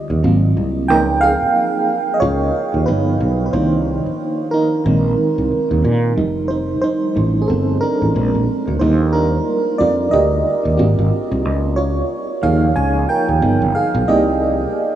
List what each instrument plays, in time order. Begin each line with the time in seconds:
Already playing: fm electric piano D3 G3 F4
0.10 fretless electric bass D#2
0.23 fretless electric bass G#1, fm electric piano F#3 A#3 C4 F4
0.57 fretless electric bass C2
0.88 fretless electric bass C#2, fm electric piano F3 A#3 D#4 A#4 G5
1.21 fm electric piano G#4 F5
1.42 muted fretless electric bass stroke
2.14 fm electric piano D#5
2.20 fretless electric bass C#2, fm electric piano F4 C#5
2.74 fretless electric bass D#2
2.86 fretless electric bass G1, fm electric piano F3 B3 D#4 B4
3.20 fretless electric bass B1
3.46 fm electric piano B4
3.53 fretless electric bass C2, fm electric piano D#3 A#3 D4 D#4 C5
4.06 muted fretless electric bass stroke
4.51 fm electric piano D#4 A#4
4.85 fretless electric bass A#1, fm electric piano D#3 G#3 C4
5.38 fretless electric bass C2
5.52 muted fretless electric bass stroke
5.71 fretless electric bass D#2
5.84 fretless electric bass A#2
6.16 fretless electric bass F1, fm electric piano F3 G3 D#4
6.48 fm electric piano D#4 C5
6.81 fm electric piano D#4 C5
7.15 fretless electric bass A1, fm electric piano G3 A3 D#4
7.42 fm electric piano G#4
7.48 fretless electric bass G1, fm electric piano C4 A4
7.81 fm electric piano D4 A#4
8.02 fretless electric bass A1
8.14 fretless electric bass A#1, fm electric piano G#3 C4 D4
8.35 fretless electric bass A#1
8.68 fretless electric bass D2
8.79 fretless electric bass D#2, fm electric piano G3 A#3 D#4 F4 C5
9.13 fm electric piano D4 A#4
9.78 fretless electric bass F2, fm electric piano G3 D4 F4 D5
10.11 fretless electric bass D2, fm electric piano G4 D#5
10.65 fretless electric bass D#2
10.77 fretless electric bass G#1, fm electric piano A#3 C4 F4 F#4
10.99 fretless electric bass G#1
11.32 fretless electric bass C2
11.45 fretless electric bass C#2
11.76 fm electric piano F4 C#5
12.42 fretless electric bass D#2, fm electric piano F3 A#3 D#4 G#4 F5
12.76 fretless electric bass C#2, fm electric piano C#5 G#5
13.09 fm electric piano A#4 G5
13.29 fretless electric bass D#2
13.41 fretless electric bass G1, fm electric piano F3 B3 D#4
13.62 fretless electric bass G1
13.75 fm electric piano G#4 F5
13.95 fretless electric bass B1
14.07 fretless electric bass C2, fm electric piano A#3 D#4 G4 D5 D#5